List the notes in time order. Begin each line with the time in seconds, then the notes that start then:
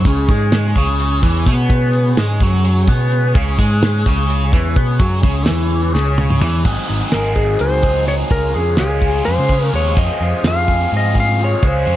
Already playing: G#3
0.05 C#2 C#3 G#4 C#5, kick, closed hi-hat, maracas
0.29 G#2 G#3, kick, closed hi-hat
0.52 snare, closed hi-hat
0.76 C#2 C#3, kick, closed hi-hat
0.88 maracas
1.00 closed hi-hat
1.23 E2 E3, kick, closed hi-hat
1.36 maracas
1.46 B2 B3, kick, closed hi-hat, maracas
1.58 maracas
1.69 kick, closed hi-hat, maracas
1.93 closed hi-hat
2.17 G#2 G#3, snare, closed hi-hat
2.40 F#2 F#3, kick, closed hi-hat
2.53 maracas
2.65 closed hi-hat
2.88 B2 B3, kick, closed hi-hat
3.01 maracas
3.12 closed hi-hat, maracas
3.35 C#2 C#3, kick, closed hi-hat, maracas
3.58 G#2 G#3, kick, closed hi-hat
3.83 snare, closed hi-hat
4.06 C#2 C#3, kick, snare, closed hi-hat
4.18 maracas
4.30 closed hi-hat
4.53 E2 E3, kick, snare, closed hi-hat
4.66 maracas
4.76 B2 B3, kick, closed hi-hat, maracas
4.89 maracas
4.99 F#2 F#3, kick, closed hi-hat, maracas
5.13 maracas
5.23 C#2 C#3, kick, closed hi-hat
5.46 E2 E3, snare, closed hi-hat
5.59 maracas
5.71 closed hi-hat
5.83 maracas
5.94 C#2 C#3, snare, maracas
6.18 high tom
6.30 mid tom
6.42 E2 E3, mid tom, maracas
6.64 G#1 G#2 D#3 F#3 C4 D#4 F#4 G#4 D#5 G#5, kick, crash
6.88 G#1 F#3 C4 D#4 G#4, closed hi-hat
7.12 G#1 F#3 C4 D#4 G#4 A#4, snare, closed hi-hat
7.35 G#4, kick, closed hi-hat
7.59 C#2 C5, closed hi-hat
7.83 F#3 C4 D#4 G#4, kick, closed hi-hat
8.06 G#2 D#3 F#3 C4 D#4 G#4 C#5, snare, closed hi-hat
8.30 C#2 C#3 G#3 C#4 F4 G#4 A#4 F5 C6, kick, closed hi-hat
8.54 F2 C#4 F4 G#4, closed hi-hat
8.77 C#2 G#3 C#4 F4 G#4, snare, closed hi-hat
8.81 G#4
9.02 kick, closed hi-hat
9.25 F2 C5, snare, closed hi-hat
9.39 C#3
9.49 F4 G#4, kick, closed hi-hat
9.54 C#4
9.73 D#2 C#3 G#3 C#4 F4 G#4 C#5, closed hi-hat
9.95 F2 F3 C4 G#4 D#5 C6, kick, closed hi-hat
9.99 F4 G#4
10.20 F2 C4 F4 G#4, closed hi-hat
10.44 F2 F3 C4 F4 G#4 F5, snare, closed hi-hat
10.68 kick, closed hi-hat
10.92 G#2, closed hi-hat
10.97 D#5
11.14 F4 G#4, kick, closed hi-hat
11.19 C4 F5
11.39 F3 C4 F4 G#4, closed hi-hat
11.44 C#5
11.63 C#2 C#3 G#3 C#4 F4 G#4, kick, closed hi-hat
11.67 C5
11.86 F2 C#4 F4 G#4, closed hi-hat